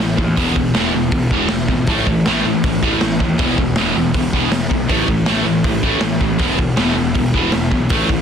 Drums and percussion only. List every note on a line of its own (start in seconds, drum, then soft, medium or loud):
0.18 kick medium
0.37 kick loud
0.37 open hi-hat medium
0.56 kick loud
0.75 snare loud
0.75 open hi-hat medium
1.11 kick loud
1.11 open hi-hat medium
1.31 kick medium
1.49 snare loud
1.49 open hi-hat medium
1.68 kick medium
1.87 kick loud
1.87 open hi-hat medium
2.07 kick medium
2.26 snare loud
2.26 open hi-hat medium
2.64 kick loud
2.64 open hi-hat medium
2.83 kick medium
3.01 snare loud
3.01 open hi-hat medium
3.20 kick medium
3.39 kick loud
3.39 open hi-hat medium
3.58 kick loud
3.76 snare loud
3.76 open hi-hat medium
4.14 kick loud
4.14 open hi-hat medium
4.33 kick medium
4.52 snare loud
4.52 open hi-hat medium
4.71 kick medium
4.89 kick loud
4.89 open hi-hat medium
5.08 kick medium
5.26 snare loud
5.26 open hi-hat medium
5.64 kick loud
5.64 open hi-hat medium
5.83 kick medium
6.01 snare loud
6.01 open hi-hat medium
6.21 kick medium
6.39 kick loud
6.39 open hi-hat medium
6.59 kick loud
6.77 snare loud
6.77 open hi-hat medium
7.15 kick loud
7.15 open hi-hat medium
7.34 kick medium
7.52 snare loud
7.52 open hi-hat medium
7.72 kick medium
7.89 kick loud
7.89 open hi-hat medium
8.09 kick medium